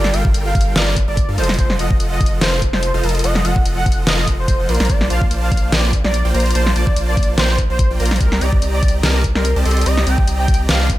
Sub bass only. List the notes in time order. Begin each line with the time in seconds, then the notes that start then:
Already playing: G1
0.14 G1
0.25 G1
0.34 G1
0.55 G1
0.76 G1
1.08 G1
1.28 G2
1.38 F1
1.59 F1
1.79 F1
1.91 F1
2.00 F1
2.21 F1
2.41 F1
2.73 F1
2.94 F1
3.04 F1
3.24 F1
3.45 F1
3.56 F1
3.66 F1
3.86 F1
4.07 F1
4.27 F1
4.48 F1
4.60 F1
4.69 A#1
4.80 A#1
4.90 A#1
5.10 A#1
5.21 A#1
5.31 A#1
5.52 A#1
5.72 A#1
6.04 A#1
6.25 A#1
6.34 A#1
6.55 A#1
6.76 A#1
6.87 A#1
6.97 A#1
7.17 A#1
7.38 A#1
7.70 A#1
7.91 A#1
8.00 A#1
8.21 C2
8.41 C2
8.52 C2
8.62 C2
8.83 C2
9.03 C2
9.35 C2
9.56 C2
9.66 C2
9.86 C2
10.07 C2
10.18 C2
10.28 C2
10.48 C2
10.69 C2